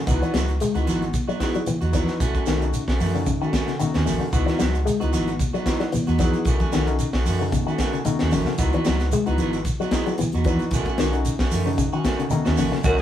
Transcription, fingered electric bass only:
0.08 C#2
0.34 C#2
0.75 C#2
0.88 G#1
1.82 E2
1.94 B1
2.08 muted fingered electric bass stroke
2.20 B1
2.47 B1
2.88 B1
3.00 F#2
3.95 D#2
4.07 A1
4.22 muted fingered electric bass stroke
4.33 C#2
4.61 C#2
5.02 C#2
5.14 G#1
6.08 E2
6.20 B1
6.35 muted fingered electric bass stroke
6.46 B1
6.74 B1
7.14 B1
7.27 F#2
8.21 D#2
8.33 A1
8.48 muted fingered electric bass stroke
8.59 C#2
8.87 C#2
9.28 C#2
9.40 G#1
10.34 E2
10.45 B1
10.60 muted fingered electric bass stroke
10.71 B1
10.99 B1
11.39 B1
11.53 F#2
12.47 D#2
12.58 A1
12.74 muted fingered electric bass stroke
12.85 C#2

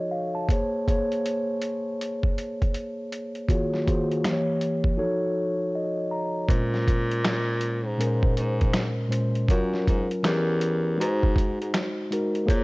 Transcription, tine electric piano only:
Already playing: F3 D#4 F#4 A4 C#5 D#5
0.12 F5
0.35 A5
0.50 A#3 G#4 C5 C#5
0.88 A#3 G#4 C5 C#5
3.48 D#3 A#3 F4 F#4 G#4 C#5
3.86 D#3 A#3 F4 F#4 G#4 C5
4.24 E3 A#3 G4 C5
4.33 C#5
4.97 F3 D#4 F#4 A4 C#5
5.76 D#5
6.11 A#5
6.48 A#2 G#3 C4 C5
6.57 C#4
7.98 A#2 G#3 C#4 A#4
8.07 C5
9.08 A#2 G#3 C#4 C5
9.48 F#3 C#4 F4 A#4
10.23 E3 C#4 G4 A#4
10.97 G#3 D#4 F#4 B4
11.07 C5
12.11 G#3 D#4 F#4 A#4
12.46 A#3 G#4 C5 C#5

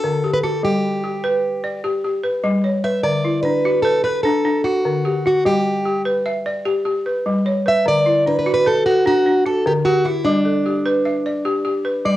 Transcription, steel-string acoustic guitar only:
Already playing: A4
0.33 B4
0.43 A4
0.65 G4
2.84 E5
3.03 D5
3.43 B4
3.82 A4
4.04 B4
4.23 A4
4.64 F#4
5.27 F#4
5.46 G4
7.68 E5
7.88 D5
8.27 B4
8.39 B4
8.54 B4
8.67 A4
8.86 F#4
9.07 F#4
9.46 A4
9.67 G4
9.85 F#4
10.05 E4
10.25 D4
12.05 D5

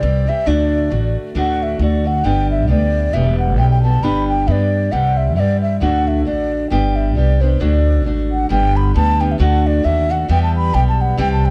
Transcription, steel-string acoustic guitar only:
0.01 E3 G3 C4 G4
0.27 E3 G3 C4 G4
0.45 D2 A2 D3 A3 D4 F#4
0.90 D3 A3 D4 F#4
1.35 D2 A2 D3 A3 D4 F#4
1.79 D3 A3 D4 F#4
2.04 D3 A3 D4 F#4
2.24 G3 B3 D4 G4
2.68 G3 B3 D4 G4
3.13 E3 G3 B3 G4
3.57 E3 G3 B3 G4
3.83 E3 G3 B3 G4
4.03 G3 B3 D4 G4
4.47 G3 B3 D4 G4
4.91 C3 E3 G3 C4 G4
5.36 E3 G3 C4 G4
5.80 D2 A2 D3 A3 D4 F#4
6.25 D3 A3 D4 F#4
6.70 G3 B3 D4 G4
7.15 G3 B3 D4 G4
7.40 G3 B3 D4 G4
7.59 D2 A2 D3 A3 D4 F#4
8.04 D3 A3 D4 F#4
8.49 G3 B3 D4 G4
8.94 G3 B3 D4 G4
9.19 G3 B3 D4 G4
9.38 D2 A2 D3 A3 D4 F#4
9.84 D3 A3 D4 F#4
10.09 D3 A3 D4 F#4
10.28 E3 G3 B3 G4
10.72 E3 G3 B3 G4
11.17 C3 E3 G3 C4 G4

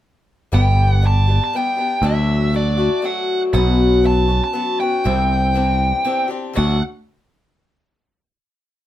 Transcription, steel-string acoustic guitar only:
0.52 G3 B3 D4 G4
1.01 G3 B3 D4 G4
1.27 B3 D4 G4
1.53 G3 B3 D4 G4
1.76 B3 D4 G4
2.03 D3 F#3 A3 D4 F#4
2.52 F#3 A3 D4 F#4
2.77 A3 D4 F#4
3.02 F#3 A3 D4 F#4
3.53 B2 F#3 B3 C#4 F#4
4.03 F#3 B3 C#4 F#4
4.28 B3 C#4 F#4
4.53 F#3 B3 C#4 F#4
4.80 B3 C#4 F#4
5.04 C3 E3 C4 D4 G4
5.54 E3 C4 D4 G4
6.04 E3 C4 D4 G4
6.28 C4 D4 G4
6.53 D3 F#3 A3 D4 F#4

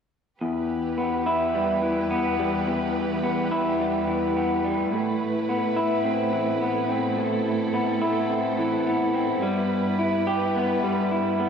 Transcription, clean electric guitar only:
0.41 E2
0.98 B3
1.26 E4
1.55 G3
1.82 E3
2.10 B3
2.39 G3
2.67 E2
3.23 B3
3.52 E4
3.80 G3
4.08 E3
4.37 B3
4.64 G3
4.92 A2
5.49 B3
5.76 E4
6.05 C4
6.33 E3
6.61 B3
6.89 C4
7.17 A2
7.73 B3
8.01 E4
8.30 C4
8.58 E3
8.87 B3
9.14 C4
9.42 G3
9.99 E4
10.27 G4
10.56 B3
10.84 G3
11.12 E4
11.40 B3

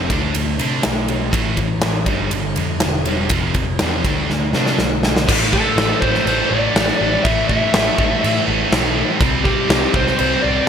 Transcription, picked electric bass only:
0.10 D2
0.36 D2
0.60 C3
0.85 B1
1.33 A1
1.83 A1
2.06 G1
2.32 G1
2.57 F2
2.82 E1
3.30 F1
3.81 E2
4.05 D2
4.30 D2
4.53 C3
4.79 B1
5.29 A1
5.76 A1
6.03 A1
6.26 A1
6.51 A1
6.75 A1
7.01 A1
7.25 A1
7.50 A1
7.74 A1
7.99 A1
8.24 A2
8.48 A1
8.71 B1
9.21 C2
9.69 C2
9.94 C2
10.20 C2
10.44 C2

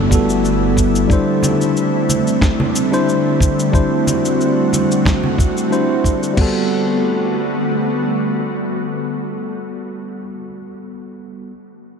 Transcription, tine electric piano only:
Already playing: G3 B3 F#4 A4
0.09 G3 B3 F#4
0.14 A4
1.08 G3 D4 E4
1.13 C5
2.91 G3 D4 E4 C5
3.72 G3 D4 E4 C5
5.70 G3 D4 E4 C5
6.33 G3 B3
6.39 F#4 A4

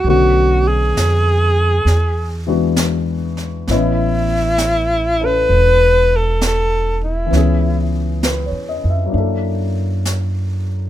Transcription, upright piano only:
0.07 D3 A3 B3 C#4 F#4
2.47 E3 G#3 B3 D4 F#4
3.70 E3 B3 C#4 B4 D#5
5.20 C#4 E4 A4
7.26 E3 B3
7.32 C#4 E4
7.37 G#4
8.24 B4
8.46 C#5
8.69 D#5
8.90 E5
9.06 F#3 A#3
9.12 D4 E4
9.18 A4

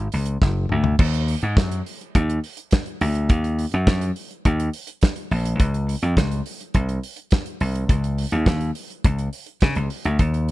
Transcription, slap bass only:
0.13 C#2
0.42 F#1
0.72 D2
0.99 D#2
1.43 G#2
1.57 F#2
2.15 D#2
3.01 D2
3.30 D#2
3.74 F#2
3.87 F#2
4.46 D#2
5.31 A#1
5.60 C#2
6.02 F2
6.17 C#2
6.75 C2
7.61 C2
7.90 C#2
8.32 D#2
8.46 D#2
9.05 C#2
9.62 C#3
9.76 C#2
10.05 D2
10.19 D#2

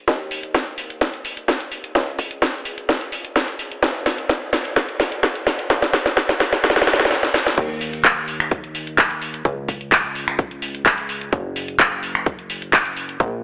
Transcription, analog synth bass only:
0.08 D#2
1.95 C#2
3.83 F#1
5.70 A#1
7.58 D#2
9.45 C#2
11.33 F#1
13.20 A#1

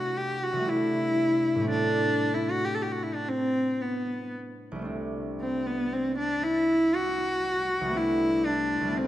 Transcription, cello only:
Already playing: F#4
0.17 G4
0.44 F#4
0.69 E4
1.70 D4
2.34 E4
2.51 F#4
2.65 G4
2.75 A4
2.83 G4
2.92 F#4
3.03 E4
3.15 D4
3.29 C4
3.81 B3
5.41 C4
5.66 B3
5.93 C4
6.18 D4
6.44 E4
6.96 F#4
7.97 E4
8.46 D4
8.97 C4

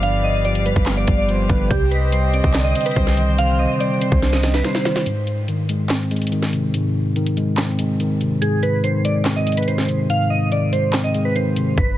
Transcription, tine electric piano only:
Already playing: G2 D3 F3 G3 B3
0.03 G2
0.45 F3
0.66 G3
0.87 B3
1.07 G3
1.29 F3
1.50 D3
1.71 C3
2.13 G3
2.34 C4
2.55 D3
2.76 C4
2.96 G3
3.17 D#3
3.38 C3
3.80 G3
4.01 C4
4.22 D4
4.43 C4
4.64 G3
4.85 D#3
5.06 G#2
5.48 D#3
5.69 G#3
5.90 C4
6.11 G#3
6.32 D#3
6.53 C3
6.74 G#2
7.16 D#3
7.37 G#3
7.58 C4
7.79 G#3
8.00 D#3
8.21 C3
8.42 G#2
8.84 D#3
9.05 G#3
9.26 C4
9.47 G#3
9.68 D#3
9.89 C3
10.10 G#2
10.52 D#3
10.73 G#3
10.94 C4
11.15 G#3
11.36 D#3
11.57 C3
11.78 G2

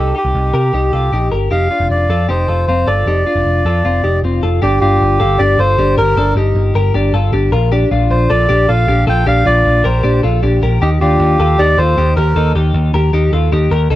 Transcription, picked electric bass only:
Already playing: C2
0.25 C2
0.35 C2
0.54 C3
0.73 C2
0.93 C2
1.12 A#1
1.32 G1
1.51 F1
1.80 F1
1.90 F1
2.09 F2
2.29 F1
2.48 F1
2.68 F1
2.87 G1
3.06 F1
3.35 F1
3.45 F1
3.65 F2
3.84 F1
4.03 F1
4.23 F1
4.43 F1
4.62 G1
4.82 G1
5.01 G1
5.21 G1
5.39 G1
5.58 G1
5.78 G1
5.98 G1
6.16 G1
6.35 G1
6.55 G1
6.75 G1
6.94 G1
7.13 G1
7.32 G1
7.52 A#1
7.91 A#1
8.10 A#1
8.30 A#1
8.50 A#1
8.69 A#1
8.88 A#1
9.07 A#1
9.26 A#1
9.46 A#1
9.65 A#1
9.84 A#1
10.04 A#1
10.24 A#1
10.43 A#1
10.62 A#1
10.81 D#2
11.01 D#2
11.20 D#2
11.39 D#2
11.59 D#2
11.78 D#2
11.97 D#2
12.17 D#2
12.36 D#2
12.55 D#2
12.74 D#2
12.93 D#2
13.13 D#2
13.33 D#2
13.52 D#2
13.71 D#2
13.90 C2

